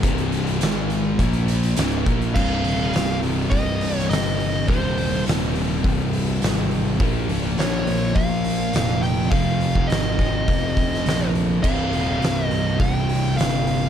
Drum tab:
CC |----------------|x---------------|----------------|----------------|
HH |xxxxx-x-xxxxxxxx|--o-o-o-o-o-o-o-|o-o-o-o-o-o-o-o-|o-o-o-o-o-o-o-o-|
SD |----o-------o---|----o------oo---|----o-------o---|----o-------o---|
BD |o-------o-----o-|o-------o-------|o-------o-------|o-------o-------|

CC |----------------|x---------------|
HH |o-o-o-o-o-o-o-o-|--o-o-o-o-o-o-o-|
SD |----o------oo---|----o-------o---|
BD |o--o--o-o-o-----|o-------o-------|